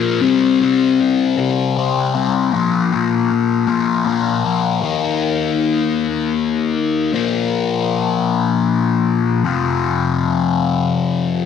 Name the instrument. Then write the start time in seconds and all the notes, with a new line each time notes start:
distorted electric guitar
Already playing: A#2 F3 A#3
0.21 C3 G3 C4
0.61 G3 C4
1.37 C3 G3 C4
1.77 C3 G3 C4
2.15 G3 C4
2.52 A#2 F3 A#3
2.92 F3 A#3
3.67 A#2 F3 A#3
4.05 A#2 F3 A#3
4.44 F3 A#3
4.81 D#3 A#3 D#4
7.13 A#2 F3 A#3
9.44 F2 C3 F3